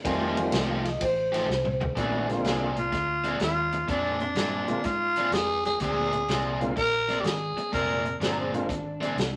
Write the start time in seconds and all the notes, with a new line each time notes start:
0.04 F2 D#3 F3 G3 A3 C4 D#4 F4 G4 G#5, kick, ride
0.37 muted overdriven electric guitar stroke, ride
0.52 C2 F3 A3 D#4 G4, snare, ride
0.70 F5
0.84 D#5, muted overdriven electric guitar stroke, snare, ride
1.01 A1 C5, muted overdriven electric guitar stroke, kick, ride
1.32 F3 A3 D#4 G4, snare, ride
1.48 C2, muted overdriven electric guitar stroke, snare
1.65 mid tom
1.81 muted overdriven electric guitar stroke, floor tom
1.96 A#1 A#2 D#3 G#3 A3 B3 C4 C#4 D4 F#4, kick, closed hi-hat
2.27 D3 G#3 A#3 C4 F4, muted overdriven electric guitar stroke, snare, closed hi-hat
2.44 C2 A#2 G#3 C4 D4, snare, closed hi-hat
2.76 F4, muted overdriven electric guitar stroke, closed hi-hat
2.92 D2, muted overdriven electric guitar stroke, kick, snare, closed hi-hat
3.24 A#2 G#3 C4 D4, closed hi-hat
3.40 D#2, muted overdriven electric guitar stroke, snare, closed hi-hat
3.44 F4
3.72 muted overdriven electric guitar stroke, closed hi-hat
3.88 F2 A#2 G#3 C4 D4, kick, closed hi-hat
4.20 D4, muted overdriven electric guitar stroke, closed hi-hat
4.35 G2 A#2 G#3 C4 D4, snare, closed hi-hat
4.68 D3 G#3 A#3 C4 F4, muted fingered electric bass stroke, muted overdriven electric guitar stroke, closed hi-hat
4.84 G#2 F4, muted overdriven electric guitar stroke, kick, snare, closed hi-hat
5.16 A#2 G#3 C4 D4, closed hi-hat
5.31 F2 G#4, muted overdriven electric guitar stroke, snare, closed hi-hat
5.65 G#4, muted overdriven electric guitar stroke, closed hi-hat
5.80 D2 A#2 G#3 C4 D4 G#4, kick, closed hi-hat
6.12 muted overdriven electric guitar stroke, closed hi-hat
6.28 C2 A#2 G#3 C4 D4, snare, closed hi-hat
6.60 D3 G#3 A#3 C4 F4, muted overdriven electric guitar stroke, closed hi-hat
6.76 A#1 A#4, muted overdriven electric guitar stroke, kick, closed hi-hat
7.08 A#2 G#3 C4 D4, snare, closed hi-hat
7.21 G#1 G4, closed hi-hat
7.25 G#4, muted overdriven electric guitar stroke, snare
7.56 muted fingered electric bass stroke, muted overdriven electric guitar stroke, closed hi-hat
7.72 F1 A#2 G#3 C4 D4 A#4, kick, closed hi-hat
8.05 muted overdriven electric guitar stroke, closed hi-hat
8.20 G1 A#2 G#3 C4 D4 A#4, snare, closed hi-hat
8.39 C4 G#4
8.54 D3 G#3 A#3 C4 D4 F4, muted overdriven electric guitar stroke, closed hi-hat
8.69 G#1, muted overdriven electric guitar stroke, kick, closed hi-hat
9.01 A#2 G#3 C4 D4, closed hi-hat
9.16 C2, muted overdriven electric guitar stroke, closed hi-hat
9.20 snare